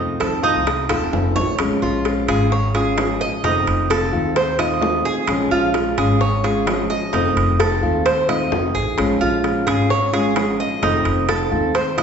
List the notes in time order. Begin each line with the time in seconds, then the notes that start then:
Already playing: F2 C3 D#3 A3 C4 D#4 F4
0.20 F2 D#3 A3 C4 F4 A4, high bongo, high timbale, low timbale
0.42 D#3 A3 C4 D#4 F4, high bongo
0.55 C2
0.66 muted nylon-string guitar stroke, high bongo, high timbale
0.89 D#1 D#3 A3 C4 F4 A4, high bongo, high timbale
1.12 F1 D#3 A3 C4 F4, low bongo, high timbale
1.36 A1 C#5, low bongo, low timbale
1.58 A#1 F3 G#3 C#4 F4, high bongo, high timbale
1.82 A#1 F4
2.05 F3 G#3 C#4 F4, high bongo, high timbale
2.28 G#1 G#3 C#4 F4 G#4, high bongo, high timbale
2.52 C#5, muted nylon-string guitar stroke, high bongo
2.75 G#3 C#4 F4 G#4, high bongo, high timbale
2.98 F3 G#3 C#4 F4, high bongo, low bongo, high timbale, low timbale
3.21 D#5, high bongo
3.43 F1 C3 D#3 A3 C4 D#4 F4, high bongo, high timbale
3.67 F1, high timbale
3.90 D#3 A3 C4 F4 A4, high bongo, high timbale
4.12 D#2 D#3 A3 C4 F4, high bongo
4.36 C5, muted nylon-string guitar stroke, high bongo, high timbale
4.59 D#3 A3 C4 F4 D#5, high bongo, high timbale
4.82 D#3 A3 C4 F4, high bongo, low bongo, low timbale
5.05 G#4
5.28 A#1 F3 G#3 C#4 F4, high bongo, high timbale
5.51 A#1 F4
5.74 F3 G#3 C#4 F4, high bongo, high timbale
5.97 G#1 G#3 C#4 F4 G#4, high bongo, high timbale
6.21 C#5, muted nylon-string guitar stroke, high bongo
6.44 G#3 C#4 F4 G#4, high bongo, high timbale
6.67 F3 G#3 C#4 F4, high bongo, low bongo, high timbale, low timbale
6.90 D#5, high bongo
7.13 F1 C3 D#3 A3 C4 D#4 F4, high bongo, high timbale
7.36 F1, high timbale
7.59 D#3 A3 C4 F4 A4, high bongo, high timbale
7.83 D#2 D#3 A3 C4 F4, high bongo
8.06 C5, muted nylon-string guitar stroke, high bongo, high timbale
8.29 D#3 A3 C4 F4 D#5, high bongo, high timbale
8.51 F1 D#3 A3 C4 F4, high bongo, low bongo, low timbale
8.75 A1 G#4
8.97 A#1 F3 G#3 C#4 F4, high bongo, high timbale
9.21 A#1 F4
9.44 F3 G#3 C#4 F4, high bongo, high timbale
9.67 G#1 G#3 C#4 F4 G#4, high bongo, high timbale
9.90 C#5, high bongo
10.13 G#3 C#4 F4 G#4, high bongo, high timbale
10.36 F3 G#3 C#4 F4, high bongo, low bongo, high timbale
10.60 D#5, high bongo
10.82 F1 C3 D#3 A3 C4 D#4 F4, high bongo, high timbale
11.05 F1, high timbale
11.28 D#3 A3 C4 F4 A4, high bongo, high timbale
11.51 D#2 D#3 A3 C4 F4, high bongo
11.74 C5, muted nylon-string guitar stroke, high bongo, high timbale
11.97 D#3 A3 C4 F4 D#5, high bongo, high timbale